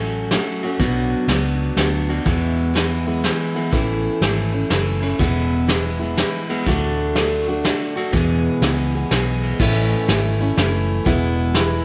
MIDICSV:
0, 0, Header, 1, 4, 480
1, 0, Start_track
1, 0, Key_signature, 3, "major"
1, 0, Tempo, 488599
1, 783, Time_signature, 3, 2, 24, 8
1, 11639, End_track
2, 0, Start_track
2, 0, Title_t, "Steel-string acoustic guitar"
2, 0, Program_c, 0, 25
2, 0, Note_on_c, 0, 54, 61
2, 0, Note_on_c, 0, 57, 60
2, 0, Note_on_c, 0, 61, 72
2, 0, Note_on_c, 0, 66, 65
2, 293, Note_off_c, 0, 54, 0
2, 305, Note_off_c, 0, 57, 0
2, 305, Note_on_c, 0, 54, 60
2, 309, Note_off_c, 0, 61, 0
2, 311, Note_off_c, 0, 66, 0
2, 315, Note_on_c, 0, 57, 65
2, 319, Note_on_c, 0, 61, 62
2, 326, Note_on_c, 0, 66, 69
2, 613, Note_off_c, 0, 66, 0
2, 615, Note_off_c, 0, 54, 0
2, 620, Note_off_c, 0, 57, 0
2, 620, Note_off_c, 0, 61, 0
2, 625, Note_on_c, 0, 66, 49
2, 632, Note_on_c, 0, 61, 44
2, 643, Note_on_c, 0, 57, 38
2, 777, Note_off_c, 0, 66, 0
2, 780, Note_on_c, 0, 47, 76
2, 781, Note_off_c, 0, 61, 0
2, 781, Note_on_c, 0, 54, 83
2, 784, Note_off_c, 0, 57, 0
2, 785, Note_on_c, 0, 62, 79
2, 788, Note_on_c, 0, 59, 78
2, 789, Note_on_c, 0, 66, 96
2, 1247, Note_off_c, 0, 54, 0
2, 1258, Note_off_c, 0, 59, 0
2, 1258, Note_off_c, 0, 62, 0
2, 1258, Note_on_c, 0, 54, 60
2, 1262, Note_off_c, 0, 47, 0
2, 1262, Note_on_c, 0, 59, 66
2, 1264, Note_off_c, 0, 66, 0
2, 1270, Note_on_c, 0, 62, 64
2, 1276, Note_on_c, 0, 66, 67
2, 1722, Note_off_c, 0, 54, 0
2, 1731, Note_off_c, 0, 59, 0
2, 1734, Note_on_c, 0, 54, 66
2, 1738, Note_off_c, 0, 62, 0
2, 1740, Note_off_c, 0, 66, 0
2, 1743, Note_on_c, 0, 59, 66
2, 1750, Note_on_c, 0, 62, 71
2, 1752, Note_on_c, 0, 66, 65
2, 2037, Note_off_c, 0, 66, 0
2, 2044, Note_off_c, 0, 62, 0
2, 2049, Note_on_c, 0, 66, 50
2, 2050, Note_off_c, 0, 54, 0
2, 2055, Note_off_c, 0, 59, 0
2, 2056, Note_on_c, 0, 62, 41
2, 2066, Note_on_c, 0, 59, 41
2, 2213, Note_on_c, 0, 40, 84
2, 2216, Note_off_c, 0, 59, 0
2, 2217, Note_on_c, 0, 47, 82
2, 2218, Note_on_c, 0, 52, 80
2, 2221, Note_off_c, 0, 66, 0
2, 2224, Note_off_c, 0, 62, 0
2, 2225, Note_on_c, 0, 56, 82
2, 2228, Note_on_c, 0, 59, 77
2, 2229, Note_on_c, 0, 64, 86
2, 2686, Note_off_c, 0, 52, 0
2, 2687, Note_off_c, 0, 56, 0
2, 2688, Note_off_c, 0, 59, 0
2, 2690, Note_on_c, 0, 52, 66
2, 2699, Note_off_c, 0, 40, 0
2, 2699, Note_on_c, 0, 56, 64
2, 2700, Note_on_c, 0, 59, 59
2, 2701, Note_off_c, 0, 47, 0
2, 2703, Note_off_c, 0, 64, 0
2, 2707, Note_on_c, 0, 64, 66
2, 2998, Note_off_c, 0, 64, 0
2, 3001, Note_off_c, 0, 59, 0
2, 3008, Note_off_c, 0, 56, 0
2, 3009, Note_off_c, 0, 52, 0
2, 3010, Note_on_c, 0, 64, 53
2, 3012, Note_on_c, 0, 59, 49
2, 3020, Note_on_c, 0, 56, 46
2, 3022, Note_on_c, 0, 52, 38
2, 3165, Note_off_c, 0, 52, 0
2, 3170, Note_off_c, 0, 56, 0
2, 3176, Note_off_c, 0, 59, 0
2, 3176, Note_off_c, 0, 64, 0
2, 3177, Note_on_c, 0, 52, 57
2, 3182, Note_on_c, 0, 56, 63
2, 3188, Note_on_c, 0, 59, 66
2, 3188, Note_on_c, 0, 64, 67
2, 3475, Note_off_c, 0, 64, 0
2, 3479, Note_off_c, 0, 59, 0
2, 3487, Note_off_c, 0, 56, 0
2, 3487, Note_on_c, 0, 64, 47
2, 3491, Note_on_c, 0, 59, 43
2, 3493, Note_off_c, 0, 52, 0
2, 3499, Note_on_c, 0, 56, 46
2, 3506, Note_on_c, 0, 52, 41
2, 3644, Note_off_c, 0, 52, 0
2, 3647, Note_on_c, 0, 45, 79
2, 3651, Note_off_c, 0, 64, 0
2, 3655, Note_off_c, 0, 59, 0
2, 3656, Note_on_c, 0, 52, 81
2, 3657, Note_off_c, 0, 56, 0
2, 3659, Note_on_c, 0, 61, 83
2, 3661, Note_on_c, 0, 57, 83
2, 3663, Note_on_c, 0, 64, 88
2, 4136, Note_off_c, 0, 45, 0
2, 4140, Note_off_c, 0, 52, 0
2, 4142, Note_off_c, 0, 61, 0
2, 4144, Note_off_c, 0, 57, 0
2, 4144, Note_on_c, 0, 52, 63
2, 4154, Note_on_c, 0, 57, 58
2, 4155, Note_off_c, 0, 64, 0
2, 4158, Note_on_c, 0, 61, 68
2, 4159, Note_on_c, 0, 64, 63
2, 4431, Note_off_c, 0, 64, 0
2, 4443, Note_off_c, 0, 61, 0
2, 4443, Note_on_c, 0, 64, 54
2, 4451, Note_off_c, 0, 57, 0
2, 4455, Note_on_c, 0, 61, 50
2, 4457, Note_off_c, 0, 52, 0
2, 4463, Note_on_c, 0, 57, 44
2, 4619, Note_off_c, 0, 64, 0
2, 4620, Note_off_c, 0, 57, 0
2, 4624, Note_on_c, 0, 52, 60
2, 4625, Note_off_c, 0, 61, 0
2, 4632, Note_on_c, 0, 57, 62
2, 4639, Note_on_c, 0, 61, 65
2, 4640, Note_on_c, 0, 64, 69
2, 4916, Note_off_c, 0, 64, 0
2, 4928, Note_on_c, 0, 64, 46
2, 4930, Note_off_c, 0, 61, 0
2, 4937, Note_off_c, 0, 52, 0
2, 4938, Note_off_c, 0, 57, 0
2, 4942, Note_on_c, 0, 61, 43
2, 4950, Note_on_c, 0, 57, 38
2, 5099, Note_off_c, 0, 64, 0
2, 5100, Note_on_c, 0, 47, 78
2, 5101, Note_on_c, 0, 40, 81
2, 5104, Note_on_c, 0, 52, 76
2, 5105, Note_off_c, 0, 57, 0
2, 5105, Note_off_c, 0, 61, 0
2, 5109, Note_on_c, 0, 56, 81
2, 5109, Note_on_c, 0, 59, 93
2, 5111, Note_on_c, 0, 64, 95
2, 5562, Note_off_c, 0, 52, 0
2, 5572, Note_off_c, 0, 56, 0
2, 5574, Note_on_c, 0, 52, 62
2, 5580, Note_off_c, 0, 64, 0
2, 5582, Note_off_c, 0, 59, 0
2, 5584, Note_off_c, 0, 40, 0
2, 5584, Note_off_c, 0, 47, 0
2, 5584, Note_on_c, 0, 56, 62
2, 5591, Note_on_c, 0, 64, 72
2, 5593, Note_on_c, 0, 59, 59
2, 5875, Note_off_c, 0, 64, 0
2, 5884, Note_off_c, 0, 59, 0
2, 5887, Note_on_c, 0, 64, 55
2, 5891, Note_off_c, 0, 56, 0
2, 5892, Note_off_c, 0, 52, 0
2, 5896, Note_on_c, 0, 59, 45
2, 5903, Note_on_c, 0, 56, 47
2, 5904, Note_on_c, 0, 52, 42
2, 6049, Note_off_c, 0, 52, 0
2, 6053, Note_off_c, 0, 56, 0
2, 6061, Note_on_c, 0, 52, 62
2, 6062, Note_off_c, 0, 64, 0
2, 6063, Note_off_c, 0, 59, 0
2, 6064, Note_on_c, 0, 56, 63
2, 6073, Note_on_c, 0, 64, 75
2, 6075, Note_on_c, 0, 59, 64
2, 6367, Note_off_c, 0, 64, 0
2, 6371, Note_off_c, 0, 59, 0
2, 6376, Note_off_c, 0, 52, 0
2, 6378, Note_off_c, 0, 56, 0
2, 6379, Note_on_c, 0, 64, 50
2, 6383, Note_on_c, 0, 59, 47
2, 6392, Note_on_c, 0, 56, 48
2, 6399, Note_on_c, 0, 52, 42
2, 6548, Note_off_c, 0, 64, 0
2, 6549, Note_off_c, 0, 52, 0
2, 6550, Note_off_c, 0, 59, 0
2, 6553, Note_on_c, 0, 50, 83
2, 6554, Note_off_c, 0, 56, 0
2, 6559, Note_on_c, 0, 57, 90
2, 6563, Note_on_c, 0, 66, 88
2, 6564, Note_on_c, 0, 62, 90
2, 7017, Note_off_c, 0, 50, 0
2, 7021, Note_off_c, 0, 57, 0
2, 7025, Note_off_c, 0, 62, 0
2, 7029, Note_on_c, 0, 50, 61
2, 7033, Note_on_c, 0, 57, 69
2, 7036, Note_off_c, 0, 66, 0
2, 7037, Note_on_c, 0, 62, 65
2, 7046, Note_on_c, 0, 66, 70
2, 7334, Note_off_c, 0, 66, 0
2, 7340, Note_off_c, 0, 50, 0
2, 7341, Note_off_c, 0, 62, 0
2, 7342, Note_off_c, 0, 57, 0
2, 7346, Note_on_c, 0, 66, 56
2, 7353, Note_on_c, 0, 62, 45
2, 7362, Note_on_c, 0, 57, 42
2, 7501, Note_off_c, 0, 57, 0
2, 7505, Note_off_c, 0, 62, 0
2, 7507, Note_on_c, 0, 50, 65
2, 7512, Note_off_c, 0, 66, 0
2, 7513, Note_on_c, 0, 57, 71
2, 7517, Note_on_c, 0, 62, 66
2, 7525, Note_on_c, 0, 66, 67
2, 7804, Note_off_c, 0, 66, 0
2, 7816, Note_off_c, 0, 62, 0
2, 7816, Note_on_c, 0, 66, 45
2, 7820, Note_off_c, 0, 50, 0
2, 7822, Note_off_c, 0, 57, 0
2, 7828, Note_on_c, 0, 62, 45
2, 7834, Note_on_c, 0, 57, 43
2, 7983, Note_on_c, 0, 47, 83
2, 7984, Note_on_c, 0, 40, 84
2, 7986, Note_off_c, 0, 66, 0
2, 7986, Note_on_c, 0, 52, 91
2, 7988, Note_off_c, 0, 57, 0
2, 7990, Note_off_c, 0, 62, 0
2, 7992, Note_on_c, 0, 56, 89
2, 7994, Note_on_c, 0, 59, 88
2, 7996, Note_on_c, 0, 68, 88
2, 8466, Note_off_c, 0, 40, 0
2, 8466, Note_off_c, 0, 47, 0
2, 8468, Note_off_c, 0, 52, 0
2, 8471, Note_off_c, 0, 56, 0
2, 8471, Note_off_c, 0, 59, 0
2, 8472, Note_off_c, 0, 68, 0
2, 8479, Note_on_c, 0, 52, 60
2, 8484, Note_on_c, 0, 56, 65
2, 8492, Note_on_c, 0, 59, 63
2, 8497, Note_on_c, 0, 68, 69
2, 8779, Note_off_c, 0, 68, 0
2, 8785, Note_off_c, 0, 52, 0
2, 8788, Note_off_c, 0, 56, 0
2, 8791, Note_on_c, 0, 68, 50
2, 8792, Note_off_c, 0, 59, 0
2, 8801, Note_on_c, 0, 56, 45
2, 8802, Note_on_c, 0, 59, 46
2, 8812, Note_on_c, 0, 52, 39
2, 8936, Note_off_c, 0, 52, 0
2, 8944, Note_off_c, 0, 56, 0
2, 8948, Note_on_c, 0, 52, 59
2, 8951, Note_off_c, 0, 59, 0
2, 8954, Note_off_c, 0, 68, 0
2, 8956, Note_on_c, 0, 56, 61
2, 8963, Note_on_c, 0, 59, 61
2, 8969, Note_on_c, 0, 68, 68
2, 9424, Note_off_c, 0, 52, 0
2, 9432, Note_off_c, 0, 56, 0
2, 9435, Note_off_c, 0, 59, 0
2, 9436, Note_on_c, 0, 45, 83
2, 9436, Note_on_c, 0, 52, 96
2, 9438, Note_off_c, 0, 68, 0
2, 9439, Note_on_c, 0, 57, 95
2, 9443, Note_on_c, 0, 61, 98
2, 9444, Note_on_c, 0, 64, 97
2, 9907, Note_off_c, 0, 52, 0
2, 9908, Note_off_c, 0, 57, 0
2, 9911, Note_off_c, 0, 45, 0
2, 9911, Note_on_c, 0, 52, 69
2, 9915, Note_off_c, 0, 61, 0
2, 9920, Note_on_c, 0, 57, 71
2, 9924, Note_off_c, 0, 64, 0
2, 9925, Note_on_c, 0, 61, 71
2, 9927, Note_on_c, 0, 64, 74
2, 10209, Note_off_c, 0, 64, 0
2, 10220, Note_off_c, 0, 52, 0
2, 10221, Note_off_c, 0, 61, 0
2, 10221, Note_on_c, 0, 64, 58
2, 10225, Note_off_c, 0, 57, 0
2, 10232, Note_on_c, 0, 61, 53
2, 10239, Note_on_c, 0, 57, 47
2, 10388, Note_off_c, 0, 64, 0
2, 10389, Note_off_c, 0, 57, 0
2, 10392, Note_on_c, 0, 52, 71
2, 10394, Note_off_c, 0, 61, 0
2, 10401, Note_on_c, 0, 57, 68
2, 10410, Note_on_c, 0, 61, 78
2, 10411, Note_on_c, 0, 64, 75
2, 10855, Note_on_c, 0, 40, 86
2, 10861, Note_off_c, 0, 52, 0
2, 10862, Note_on_c, 0, 47, 87
2, 10863, Note_off_c, 0, 57, 0
2, 10865, Note_on_c, 0, 52, 96
2, 10866, Note_off_c, 0, 64, 0
2, 10866, Note_on_c, 0, 56, 93
2, 10868, Note_off_c, 0, 61, 0
2, 10870, Note_on_c, 0, 64, 96
2, 10872, Note_on_c, 0, 59, 107
2, 11338, Note_off_c, 0, 56, 0
2, 11339, Note_off_c, 0, 40, 0
2, 11341, Note_off_c, 0, 52, 0
2, 11341, Note_off_c, 0, 59, 0
2, 11342, Note_off_c, 0, 47, 0
2, 11345, Note_on_c, 0, 52, 70
2, 11350, Note_on_c, 0, 56, 68
2, 11353, Note_off_c, 0, 64, 0
2, 11353, Note_on_c, 0, 59, 72
2, 11356, Note_on_c, 0, 64, 77
2, 11639, Note_off_c, 0, 52, 0
2, 11639, Note_off_c, 0, 56, 0
2, 11639, Note_off_c, 0, 59, 0
2, 11639, Note_off_c, 0, 64, 0
2, 11639, End_track
3, 0, Start_track
3, 0, Title_t, "Fingered electric bass"
3, 0, Program_c, 1, 33
3, 0, Note_on_c, 1, 33, 82
3, 354, Note_off_c, 1, 33, 0
3, 778, Note_on_c, 1, 35, 81
3, 1117, Note_off_c, 1, 35, 0
3, 1254, Note_on_c, 1, 37, 85
3, 1666, Note_off_c, 1, 37, 0
3, 1735, Note_on_c, 1, 38, 77
3, 2147, Note_off_c, 1, 38, 0
3, 2216, Note_on_c, 1, 40, 84
3, 3231, Note_off_c, 1, 40, 0
3, 3660, Note_on_c, 1, 33, 82
3, 3999, Note_off_c, 1, 33, 0
3, 4137, Note_on_c, 1, 32, 78
3, 4549, Note_off_c, 1, 32, 0
3, 4622, Note_on_c, 1, 30, 77
3, 5032, Note_off_c, 1, 30, 0
3, 5100, Note_on_c, 1, 28, 84
3, 6115, Note_off_c, 1, 28, 0
3, 6545, Note_on_c, 1, 38, 85
3, 7558, Note_off_c, 1, 38, 0
3, 7987, Note_on_c, 1, 40, 87
3, 8325, Note_off_c, 1, 40, 0
3, 8462, Note_on_c, 1, 37, 75
3, 8872, Note_off_c, 1, 37, 0
3, 8948, Note_on_c, 1, 35, 78
3, 9356, Note_off_c, 1, 35, 0
3, 9429, Note_on_c, 1, 33, 91
3, 9765, Note_off_c, 1, 33, 0
3, 9908, Note_on_c, 1, 32, 87
3, 10315, Note_off_c, 1, 32, 0
3, 10387, Note_on_c, 1, 30, 87
3, 10794, Note_off_c, 1, 30, 0
3, 10866, Note_on_c, 1, 28, 99
3, 11639, Note_off_c, 1, 28, 0
3, 11639, End_track
4, 0, Start_track
4, 0, Title_t, "Drums"
4, 303, Note_on_c, 9, 38, 85
4, 303, Note_on_c, 9, 51, 61
4, 401, Note_off_c, 9, 38, 0
4, 401, Note_off_c, 9, 51, 0
4, 614, Note_on_c, 9, 51, 56
4, 712, Note_off_c, 9, 51, 0
4, 780, Note_on_c, 9, 51, 61
4, 782, Note_on_c, 9, 36, 96
4, 878, Note_off_c, 9, 51, 0
4, 881, Note_off_c, 9, 36, 0
4, 1259, Note_on_c, 9, 38, 78
4, 1259, Note_on_c, 9, 51, 60
4, 1357, Note_off_c, 9, 38, 0
4, 1357, Note_off_c, 9, 51, 0
4, 1738, Note_on_c, 9, 38, 85
4, 1738, Note_on_c, 9, 51, 60
4, 1836, Note_off_c, 9, 38, 0
4, 1836, Note_off_c, 9, 51, 0
4, 2054, Note_on_c, 9, 51, 57
4, 2153, Note_off_c, 9, 51, 0
4, 2219, Note_on_c, 9, 51, 57
4, 2220, Note_on_c, 9, 36, 96
4, 2317, Note_off_c, 9, 51, 0
4, 2318, Note_off_c, 9, 36, 0
4, 2705, Note_on_c, 9, 38, 78
4, 2705, Note_on_c, 9, 51, 56
4, 2803, Note_off_c, 9, 38, 0
4, 2803, Note_off_c, 9, 51, 0
4, 3180, Note_on_c, 9, 38, 79
4, 3180, Note_on_c, 9, 51, 58
4, 3278, Note_off_c, 9, 38, 0
4, 3278, Note_off_c, 9, 51, 0
4, 3496, Note_on_c, 9, 51, 52
4, 3594, Note_off_c, 9, 51, 0
4, 3662, Note_on_c, 9, 36, 95
4, 3664, Note_on_c, 9, 51, 52
4, 3760, Note_off_c, 9, 36, 0
4, 3763, Note_off_c, 9, 51, 0
4, 4143, Note_on_c, 9, 38, 80
4, 4143, Note_on_c, 9, 51, 62
4, 4242, Note_off_c, 9, 38, 0
4, 4242, Note_off_c, 9, 51, 0
4, 4619, Note_on_c, 9, 38, 82
4, 4619, Note_on_c, 9, 51, 64
4, 4718, Note_off_c, 9, 38, 0
4, 4718, Note_off_c, 9, 51, 0
4, 4934, Note_on_c, 9, 51, 52
4, 5032, Note_off_c, 9, 51, 0
4, 5101, Note_on_c, 9, 51, 56
4, 5103, Note_on_c, 9, 36, 94
4, 5199, Note_off_c, 9, 51, 0
4, 5201, Note_off_c, 9, 36, 0
4, 5584, Note_on_c, 9, 38, 83
4, 5584, Note_on_c, 9, 51, 61
4, 5683, Note_off_c, 9, 38, 0
4, 5683, Note_off_c, 9, 51, 0
4, 6066, Note_on_c, 9, 38, 82
4, 6066, Note_on_c, 9, 51, 59
4, 6164, Note_off_c, 9, 38, 0
4, 6164, Note_off_c, 9, 51, 0
4, 6383, Note_on_c, 9, 51, 57
4, 6481, Note_off_c, 9, 51, 0
4, 6547, Note_on_c, 9, 36, 98
4, 6547, Note_on_c, 9, 51, 55
4, 6645, Note_off_c, 9, 51, 0
4, 6646, Note_off_c, 9, 36, 0
4, 7029, Note_on_c, 9, 38, 79
4, 7029, Note_on_c, 9, 51, 57
4, 7127, Note_off_c, 9, 38, 0
4, 7127, Note_off_c, 9, 51, 0
4, 7511, Note_on_c, 9, 38, 85
4, 7511, Note_on_c, 9, 51, 57
4, 7609, Note_off_c, 9, 38, 0
4, 7609, Note_off_c, 9, 51, 0
4, 7826, Note_on_c, 9, 51, 51
4, 7924, Note_off_c, 9, 51, 0
4, 7987, Note_on_c, 9, 51, 55
4, 7989, Note_on_c, 9, 36, 95
4, 8086, Note_off_c, 9, 51, 0
4, 8088, Note_off_c, 9, 36, 0
4, 8469, Note_on_c, 9, 38, 76
4, 8469, Note_on_c, 9, 51, 57
4, 8568, Note_off_c, 9, 38, 0
4, 8568, Note_off_c, 9, 51, 0
4, 8950, Note_on_c, 9, 38, 79
4, 8950, Note_on_c, 9, 51, 58
4, 9048, Note_off_c, 9, 38, 0
4, 9048, Note_off_c, 9, 51, 0
4, 9262, Note_on_c, 9, 51, 60
4, 9360, Note_off_c, 9, 51, 0
4, 9428, Note_on_c, 9, 49, 104
4, 9429, Note_on_c, 9, 36, 109
4, 9527, Note_off_c, 9, 36, 0
4, 9527, Note_off_c, 9, 49, 0
4, 9908, Note_on_c, 9, 38, 91
4, 9908, Note_on_c, 9, 42, 69
4, 10006, Note_off_c, 9, 38, 0
4, 10006, Note_off_c, 9, 42, 0
4, 10387, Note_on_c, 9, 38, 93
4, 10387, Note_on_c, 9, 42, 66
4, 10486, Note_off_c, 9, 38, 0
4, 10486, Note_off_c, 9, 42, 0
4, 10867, Note_on_c, 9, 36, 108
4, 10867, Note_on_c, 9, 42, 59
4, 10965, Note_off_c, 9, 42, 0
4, 10966, Note_off_c, 9, 36, 0
4, 11342, Note_on_c, 9, 38, 93
4, 11342, Note_on_c, 9, 42, 60
4, 11440, Note_off_c, 9, 38, 0
4, 11440, Note_off_c, 9, 42, 0
4, 11639, End_track
0, 0, End_of_file